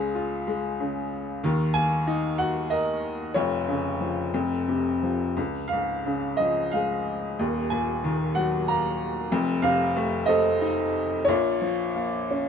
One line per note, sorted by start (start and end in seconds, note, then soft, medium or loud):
0.00 1.39 C#2 medium
0.00 0.78 C#3 medium
0.00 0.46 G#3 medium
0.00 0.44 G#4 medium
0.00 0.18 F5 medium
0.15 1.40 F4 medium
0.47 1.41 G#3 medium
0.80 1.42 C#3 soft
1.44 3.32 D#2 medium
1.44 3.32 D#3 medium
1.74 3.00 A#3 medium
1.74 2.41 G#5 loud
2.07 3.32 D#4 medium
2.38 3.33 F#4 medium
2.38 2.72 F#5 loud
2.70 3.34 A#4 medium
2.70 3.37 D#5 medium
3.34 4.30 F1 medium
3.34 4.31 F2 medium
3.34 4.29 F4 soft
3.34 4.04 C#5 medium
3.68 4.32 C#3 medium
4.00 4.33 F3 medium
4.34 5.32 F1 medium
4.34 5.33 F2 medium
4.68 5.34 C3 soft
5.03 5.35 F3 soft
5.37 7.36 C#2 medium
5.68 6.40 F5 medium
5.72 7.04 G#2 soft
6.05 7.36 C#3 medium
6.37 7.37 F3 soft
6.37 6.73 D#5 medium
6.72 7.38 G#3 soft
6.72 7.35 F5 medium
7.39 9.28 D#1 medium
7.39 9.28 D#2 medium
7.70 8.96 A#2 medium
7.70 8.32 G#5 medium
8.04 9.28 D#3 medium
8.35 9.29 F#3 medium
8.35 8.65 F#5 medium
8.68 9.30 A#3 medium
8.68 9.28 A#5 loud
9.32 11.24 F1 medium
9.32 11.24 F2 medium
9.62 10.90 C3 medium
9.62 10.30 F5 loud
9.96 11.24 A3 medium
10.26 11.25 C4 medium
10.26 11.24 A4 medium
10.26 11.22 D#5 loud
10.62 11.26 D#4 medium
11.25 12.49 A#1 medium
11.25 12.49 A#2 medium
11.25 12.49 F4 medium
11.25 12.49 C#5 medium
11.62 12.49 F3 medium
11.95 12.49 A#3 medium
12.31 12.49 C#4 medium